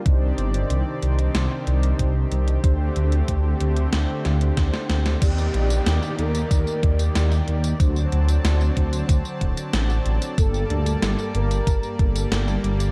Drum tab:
CC |----------------|----------------|x---------------|----------------|
HH |x-xxx-xxx-xxx-xx|x-xxx-xxx-xxx-xx|x-xxx-xxx-xxx-xx|x-xxx-xxx-xxx-xx|
TB |----------------|----------------|xx-xxx-xxx-xxx-x|xx-xxx-xxx-xxx-x|
SD |--------o-------|--------o-o-oooo|----o-------oo--|----o-------o---|
BD |o-----------o---|o---o-------o---|o-------o-o-----|o-----o-o-o-----|

CC |----------------|
HH |x-xxx-xxx-xxx-xx|
TB |xx-xxx-xxx-xxx-x|
SD |----o-------oo--|
BD |o-------o-o-----|